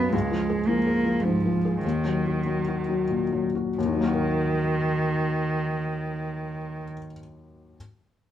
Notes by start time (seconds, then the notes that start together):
Already playing: B1 F#2 F#3 B3 B4
0.13 C#2 G#3
0.31 F3
0.49 G#4
0.67 F3 A#3
0.87 G#4
1.05 F3
1.23 G#2 F3
1.46 F3
1.65 G#4
1.84 D#2 D#3
2.05 F#3
2.26 F#4
2.46 F#3
2.67 F#4
2.89 F#3
3.10 A#2
3.33 F#3
3.55 F#4
3.78 D#2 D#3
3.85 D#3
3.93 F#3
4.00 A#3
4.06 F#4
4.14 A#4